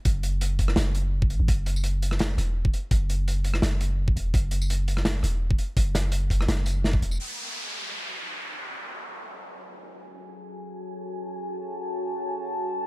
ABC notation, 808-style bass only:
X:1
M:4/4
L:1/16
Q:"Swing 16ths" 1/4=168
K:F#m
V:1 name="808-style bass" clef=bass
F,,,8 F,,,6 G,,, G,,, | F,,,8- F,,,2 E,,,4 z2 | F,,,8 F,,,6 E,,,2 | F,,,8- F,,,2 E,,,4 z2 |
F,,,8 F,,,6 E,,,2 | z16 | z16 | z16 |
z16 |]